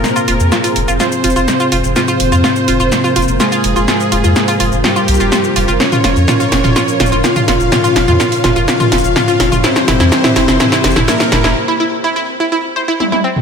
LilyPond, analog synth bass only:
\new Staff \with { instrumentName = "Analog synth bass" } { \clef bass \time 4/4 \key f \minor \tempo 4 = 125 r8 f,,16 f,16 r8 f,,16 f,,16 r8 f,,16 f,,16 r8 f,,16 f,,16 | r8 f,,16 f,16 r8 f,,16 f,,16 r8 f,,16 f,,16 r8 f,,16 f,,16 | r8 f,,16 f,16 r8 f,,16 f,,16 r8 c,16 f,,16 r8 f,,16 f,,16 | r8 f,,16 f,16 r8 f,,16 f,,16 r8 f,,16 f,,16 r8 f,,16 f,,16 |
r8 f,,16 f,16 r8 f,,16 f,,16 r8 f,,16 f,,16 r8 f,,16 f,,16 | r8 f,,16 f,16 r8 f,,16 f,,16 r8 f,,16 f,,16 r8 f,,16 f,,16 | r1 | }